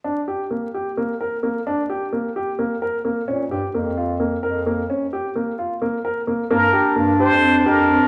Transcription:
X:1
M:7/8
L:1/16
Q:1/4=130
K:Gm
V:1 name="Muted trumpet"
z12 z2 | z12 z2 | z12 z2 | z12 z2 |
B4 z2 c4 B4 |]
V:2 name="Clarinet"
z12 z2 | z12 z2 | z12 z2 | z12 z2 |
D12- D2 |]
V:3 name="Grand piano"
D2 G2 B,2 G2 B,2 B2 B,2 | D2 G2 B,2 G2 B,2 B2 B,2 | _D2 G2 B,2 F2 B,2 B2 B,2 | _D2 G2 B,2 F2 B,2 B2 B,2 |
B,2 G2 B,2 G2 C2 G2 C2 |]
V:4 name="Bass clarinet" clef=bass
z12 z2 | z12 z2 | B,,2 G,, z F,,6 F,,4 | z12 z2 |
G,,2 z2 G,,3 F,,3 F,,3 G,, |]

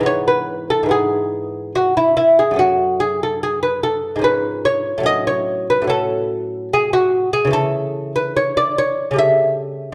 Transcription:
X:1
M:3/4
L:1/16
Q:1/4=72
K:F#dor
V:1 name="Lute"
c B2 A G4 F E E G | F2 G A G B A2 B2 c2 | d c2 B A4 G F2 G | [K:A] A3 B c d c2 e4 |]
V:2 name="Lute" clef=bass
[G,,E,B,]4 [G,,E,B,]8 | [F,,A,C]8 [G,,^E,C]4 | [A,,F,C]4 [A,,F,C]8 | [K:A] [C,E,A,]8 [C,=G,A,]4 |]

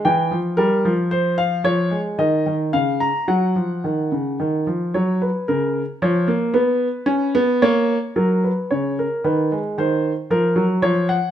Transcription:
X:1
M:3/4
L:1/8
Q:1/4=112
K:F#
V:1 name="Grand piano"
=g2 _B2 =c =f | c2 d2 e a | f4- f z | c B A2 c2 |
B4 c2 | A B c A B2 | ^B2 A2 c f |]
V:2 name="Grand piano" clef=bass
=E, ^E, =G, E,3 | E, G, D, D, C,2 | F, E, D, C, D, E, | F,2 C,2 E, A, |
B,2 C B, A,2 | F,2 C,2 D, G, | D,2 E, F, E,2 |]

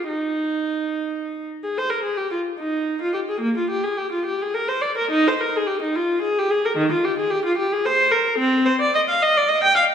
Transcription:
X:1
M:3/4
L:1/16
Q:1/4=108
K:Eb
V:1 name="Viola"
E8- E2 z A | c B A G F2 E3 F G A | B, F G A G F G A B c d B | E c B A G E F2 A G A B |
E, F G A G F G A c2 B2 | C2 c d e f e d e g f2 |]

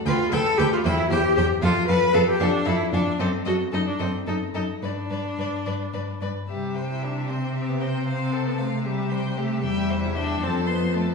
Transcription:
X:1
M:6/8
L:1/16
Q:3/8=76
K:C
V:1 name="Violin"
g2 g2 g2 g2 g2 g2 | f2 f2 f2 f2 f2 f2 | ^d2 d2 d2 d2 d2 d2 | d2 d2 d2 d2 d2 d2 |
e2 g2 e2 g2 e2 g2 | f2 a2 f2 e2 g2 e2 | g2 e2 g2 a2 c'2 a2 |]
V:2 name="Violin"
B2 B2 B2 c2 c2 c2 | A2 A2 A2 A2 A2 A2 | A2 A2 A2 A2 A2 A2 | B2 B2 B2 B2 B2 B2 |
G2 c2 G2 c2 G2 c2 | c2 A2 c2 G2 c2 G2 | e2 c2 e2 A2 c2 A2 |]
V:3 name="Viola"
F2 A2 G F E2 G2 G2 | F2 B2 A G D2 E2 D2 | C2 ^F2 ^D =D C2 ^D2 D2 | D8- D2 z2 |
G,3 E D2 C3 B, C2 | C3 B, A,2 G,4 A,2 | G,3 E D2 C2 B,2 A,2 |]
V:4 name="Cello" clef=bass
D,,2 D,,2 D,,2 E,,2 E,,2 E,,2 | F,,2 F,,2 F,,2 F,,2 F,,2 F,,2 | ^F,,2 F,,2 F,,2 F,,2 F,,2 F,,2 | G,,2 G,,2 G,,2 G,,2 G,,2 G,,2 |
C,12- | C,12 | E,,6 F,,6 |]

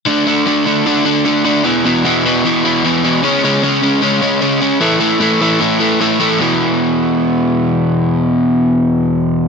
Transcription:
X:1
M:4/4
L:1/8
Q:1/4=152
K:Emix
V:1 name="Overdriven electric guitar" clef=bass
[D,A,D] [D,A,D] [D,A,D] [D,A,D] [D,A,D] [D,A,D] [D,A,D] [D,A,D] | [E,,B,,E,] [E,,B,,E,] [E,,B,,E,] [E,,B,,E,] [E,,B,,E,] [E,,B,,E,] [E,,B,,E,] [E,,B,,E,] | [C,G,C] [C,G,C] [C,G,C] [C,G,C] [C,G,C] [C,G,C] [C,G,C] [C,G,C] | [A,,E,A,] [A,,E,A,] [A,,E,A,] [A,,E,A,] [A,,E,A,] [A,,E,A,] [A,,E,A,] [A,,E,A,] |
[E,,B,,E,]8- | [E,,B,,E,]8 |]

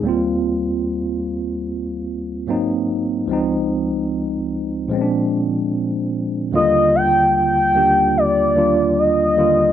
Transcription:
X:1
M:4/4
L:1/16
Q:1/4=74
K:Ebmix
V:1 name="Soft synth lead"
z16 | z16 | [K:Eb] e2 g2 g4 d4 e4 |]
V:2 name="Tine electric piano"
[E,,G,B,CF]12 [A,,_G,B,CE]4 | [D,,F,A,CE]8 [B,,F,A,CD=D]8 | [K:Eb] [E,,D,_G,=G,B,F]4- [E,,D,_G,=G,B,F] z [E,,G,B,DG]4 [E,,G,B,DF]4 [E,,D,G,B,F]2 |]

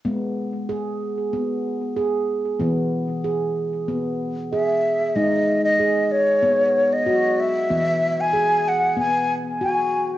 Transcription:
X:1
M:4/4
L:1/16
Q:"Swing 16ths" 1/4=94
K:G#m
V:1 name="Flute"
z16 | z12 e4 | d3 d3 c4- c d3 e2- | e3 g3 f2 g2 z2 g3 z |]
V:2 name="Handpan"
B,4 G4 B,4 G4 | B,4 G4 B,4 G4 | D4 G4 B,4 F4 | B,4 G4 B,4 F4 |]
V:3 name="Handpan" clef=bass
G,16 | E,16 | G,16 | E,16 |]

